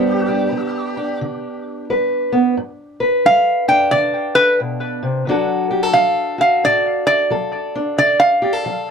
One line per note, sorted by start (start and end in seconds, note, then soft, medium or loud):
0.00 0.48 G2 medium
0.00 0.52 G3 medium
0.00 2.31 B3 medium
0.00 0.28 D4 medium
0.00 1.19 G4 medium
0.00 1.90 G4 medium
0.29 0.97 D4 medium
0.52 1.16 G3 medium
0.97 3.68 D4 medium
1.21 1.84 D3 medium
1.90 2.52 G3 medium
1.90 2.54 B4 medium
2.32 2.54 B3 medium
2.57 3.20 G2 medium
3.00 5.25 B4 medium
3.25 3.88 G3 medium
3.25 3.67 F5 medium
3.68 5.29 D4 medium
3.68 3.92 G5 medium
3.91 4.55 D3 medium
3.91 4.33 D5 medium
4.35 4.59 B4 medium
4.60 5.03 B2 medium
5.03 5.27 C3 medium
5.27 5.90 D3 medium
5.27 5.94 F#3 medium
5.27 7.74 D4 medium
5.27 6.38 F#4 medium
5.27 5.70 A4 medium
5.71 5.83 G4 medium
5.83 7.30 A4 medium
5.93 6.57 F#3 medium
5.93 6.36 F5 medium
6.38 7.95 F#4 medium
6.38 6.63 F5 medium
6.64 7.26 A2 medium
6.64 7.05 D5 medium
7.07 7.30 D5 medium
7.30 7.93 F#3 medium
7.30 7.95 A4 medium
7.75 7.96 D4 medium
7.98 8.60 D3 medium
7.98 8.20 D5 medium
8.20 8.91 F5 medium
8.42 8.53 G4 medium
8.53 8.91 A4 medium
8.66 8.91 F#3 medium